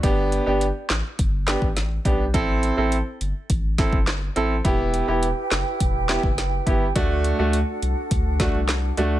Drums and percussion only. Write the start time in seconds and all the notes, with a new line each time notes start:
0.03 kick, closed hi-hat
0.32 closed hi-hat
0.61 closed hi-hat
0.90 snare, clap, closed hi-hat
1.19 kick, closed hi-hat
1.48 snare, clap, closed hi-hat
1.62 kick
1.77 snare, closed hi-hat
2.05 kick, closed hi-hat
2.34 kick, closed hi-hat
2.63 closed hi-hat
2.92 closed hi-hat
3.21 closed hi-hat
3.50 kick, closed hi-hat
3.78 kick, snare, closed hi-hat
3.93 kick
4.07 cross-stick, snare, clap, closed hi-hat
4.36 closed hi-hat
4.65 kick, closed hi-hat
4.94 closed hi-hat
5.23 closed hi-hat
5.51 snare, clap, closed hi-hat
5.80 kick, closed hi-hat
6.09 snare, clap, closed hi-hat
6.23 kick
6.38 snare, closed hi-hat
6.67 kick, closed hi-hat
6.96 kick, closed hi-hat
7.24 closed hi-hat
7.53 closed hi-hat
7.82 closed hi-hat
8.11 kick, closed hi-hat
8.40 kick, snare, closed hi-hat
8.69 snare, clap, closed hi-hat
8.97 closed hi-hat